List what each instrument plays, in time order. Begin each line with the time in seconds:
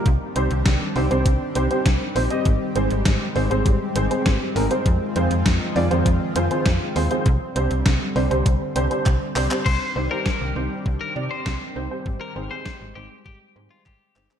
Already playing: analog synth pad D#3 G3
0.06 fm bass C2, analog synth pad C4 D4 G4, kick, closed hi-hat
0.36 fm bass C2, grand piano C4 D#4 G4 C5, closed hi-hat
0.51 fm bass C2, closed hi-hat
0.66 fm bass C2, kick, snare, closed hi-hat
0.96 fm bass C2, grand piano C4 D#4 G4 C5, open hi-hat
1.11 fm bass C2, grand piano C4 D#4 G4 C5, closed hi-hat
1.26 fm bass C2, kick, closed hi-hat
1.55 fm bass C2, grand piano C4 D#4 G4 C5, closed hi-hat
1.71 grand piano C4 D#4 G4 C5, closed hi-hat
1.86 fm bass C2, kick, snare, closed hi-hat
2.16 fm bass A#1, grand piano C4 D#4 G4 C5, open hi-hat
2.30 grand piano C4 D#4 G4 D#5, closed hi-hat
2.45 fm bass G#1, analog synth pad G#3, kick, closed hi-hat
2.76 fm bass G#1, grand piano C4 D#4 G#4 C5, closed hi-hat
2.91 fm bass G#1, closed hi-hat
3.05 fm bass G#1, kick, snare, closed hi-hat
3.36 fm bass G#1, grand piano C4 D#4 G#4 C5, open hi-hat
3.51 fm bass G#1, grand piano C4 D#4 G#4 C5, closed hi-hat
3.66 fm bass G#1, kick, closed hi-hat
3.96 fm bass G#1, grand piano C4 D#4 G#4 C5, closed hi-hat
4.11 grand piano C4 D#4 G#4 C5, closed hi-hat
4.26 fm bass G#1, kick, snare, closed hi-hat
4.56 fm bass G#1, grand piano C4 D#4 G#4 A#4, open hi-hat
4.71 grand piano C4 D#4 G#4 C5, closed hi-hat
4.86 fm bass F2, analog synth pad D#3 F3 F4, kick, closed hi-hat
5.16 fm bass F2, grand piano C4 F4 G#4 C5, closed hi-hat
5.31 fm bass F2, closed hi-hat
5.46 fm bass F2, kick, snare, closed hi-hat
5.76 fm bass F2, grand piano C4 F4 G#4 D5, open hi-hat
5.91 fm bass F2, grand piano C4 F4 G#4 C5, closed hi-hat
6.06 fm bass F2, kick, closed hi-hat
6.36 fm bass F2, grand piano C4 F4 G#4 C5, closed hi-hat
6.51 grand piano C4 F4 G#4 C5, closed hi-hat
6.66 fm bass F2, kick, snare, closed hi-hat
6.96 fm bass D#2, grand piano C4 F4 G#4 C5, open hi-hat
7.11 grand piano C4 F4 G#4 C5, closed hi-hat
7.26 fm bass C2, analog synth pad D3 G3, kick, closed hi-hat
7.56 fm bass C2, grand piano C4 D4 G4 C5, closed hi-hat
7.71 fm bass C2, closed hi-hat
7.86 fm bass C2, kick, snare, closed hi-hat
8.16 fm bass C2, grand piano C4 D4 G4 C5, open hi-hat
8.31 fm bass C2, grand piano C4 D4 G4 C5, closed hi-hat
8.46 fm bass C2, kick, closed hi-hat
8.76 fm bass C2, grand piano C4 D4 G4 C5, closed hi-hat
8.91 grand piano C4 D4 G4 C5, closed hi-hat
9.06 fm bass C2, kick, clap, closed hi-hat
9.36 fm bass C2, grand piano C4 D4 G4 C5, clap, open hi-hat
9.51 grand piano C4 D4 G4 C5, clap, closed hi-hat
9.66 fm bass C2, analog synth pad D#3 G3 C4 D4 G4, clean electric guitar C5, kick, crash
9.96 fm bass C2, grand piano C4 D#4 G4 C5
10.11 grand piano C4 D#4 G4 C5, clean electric guitar A#4
10.26 kick, snare
10.41 fm bass C2
10.56 fm bass C2, grand piano C4 D#4 G4 C5
10.86 fm bass C2, kick
11.01 clean electric guitar A#4
11.16 fm bass C3, grand piano C4 D#4 G4 D5
11.31 clean electric guitar C5
11.46 fm bass C2, kick, snare
11.76 fm bass C2, grand piano C4 D#4 G4 C5
11.91 grand piano C4 D#4 G4 C5
12.06 fm bass G#1, analog synth pad G#3 G4, kick
12.21 clean electric guitar A#4
12.36 fm bass G#1, grand piano C4 D#4 G#4 C5
12.51 grand piano C4 D#4 G#4 C5, clean electric guitar C5
12.66 kick, snare
12.81 fm bass G#1
12.95 fm bass G#1, grand piano C4 D#4 G#4 C5, clean electric guitar G4
13.26 fm bass G#1, clean electric guitar G4, kick
13.56 fm bass G#2, grand piano C4 D#4 G#4 C5
13.71 clean electric guitar F4
13.86 fm bass G#1, clean electric guitar G4, kick, clap
14.16 fm bass G1, grand piano C4 D#4 G#4 C5, clap
14.31 grand piano C4 D#4 G#4 C5, clap